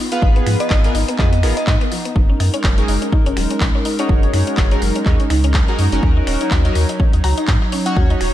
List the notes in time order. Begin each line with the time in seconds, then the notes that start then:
Already playing: B3 F4
0.12 B3 F4 G#4 B4 F5, closed hi-hat
0.22 G#1 D#4, kick
0.36 B3, closed hi-hat
0.47 G#2 F3, finger snap, open hi-hat
0.60 B3 D#5, closed hi-hat
0.70 G#1 D#4 D#5, kick, clap
0.84 B3 F4 G#4 A#4, closed hi-hat
0.95 G#1 D#4, open hi-hat
1.08 B3, closed hi-hat
1.19 F2 F3 B3 F4 G#4 B4 D#5, kick, clap
1.33 B3, closed hi-hat
1.43 G#1 B3 D#4 F4 G#4 A#4, finger snap, open hi-hat
1.57 B3 D#5, closed hi-hat
1.67 G#2 D#4 D#5, kick, clap
1.81 B3, closed hi-hat
1.92 F3, open hi-hat
2.05 B3, closed hi-hat
2.16 F#1 G#3 D#4 A#4, kick
2.30 C#4
2.40 F#2 D#4, finger snap, open hi-hat
2.54 C#4, closed hi-hat
2.64 F#1 F#3, kick, clap
2.78 C#4 D#4 F#4 G#4 A#4, closed hi-hat
2.88 F#1 D#4, open hi-hat
3.02 C#4, closed hi-hat
3.12 D#4, kick
3.26 F#1 C#4, closed hi-hat
3.37 D#1 F#3, finger snap, open hi-hat
3.50 C#4, closed hi-hat
3.60 A#1 D#4, kick, clap
3.75 C#4
3.85 D#4, open hi-hat
3.99 C#4 D#4 F#4 G#4 C#5, closed hi-hat
4.09 F#1 F#3, kick
4.23 C#4, closed hi-hat
4.34 F#2 D#4, finger snap, open hi-hat
4.47 C#4, closed hi-hat
4.57 F#1 D#4, kick, clap
4.71 C#4 D#4 F#4 G#4 A#4, closed hi-hat
4.82 F#1 F#3, open hi-hat
4.96 C#4, closed hi-hat
5.06 D#2 D#4 F#4 G#4 C#5, kick, clap
5.20 C#4, closed hi-hat
5.30 C#2 D#4, finger snap, open hi-hat
5.44 C#4, closed hi-hat
5.54 F#3, kick, clap
5.68 C#4 D#4 F#4 G#4 A#4, closed hi-hat
5.79 F#2 D#4, open hi-hat
5.92 F#1 C#4 D#4 F#4 A#4, closed hi-hat
6.03 D#2 F#3 C#5, kick
6.17 D#4
6.27 D#1 C#4, finger snap, open hi-hat
6.41 D#4, closed hi-hat
6.51 D#2 F#4, kick, clap
6.65 C#4 D#4 F#4 A#4, closed hi-hat
6.75 D#2 F#3, open hi-hat
6.89 D#4, closed hi-hat
7.00 C#4, kick
7.13 D#2 D#4, closed hi-hat
7.24 C#2 F#4 A#5, finger snap, open hi-hat
7.38 D#4, closed hi-hat
7.48 G#2 F#3, kick, clap
7.62 D#4
7.72 C#4, open hi-hat
7.86 C#4 D#4 F#4 C#5 F#5, closed hi-hat
7.96 D#2 F#4, kick
8.10 D#4, closed hi-hat
8.21 D#1 F#3, finger snap, open hi-hat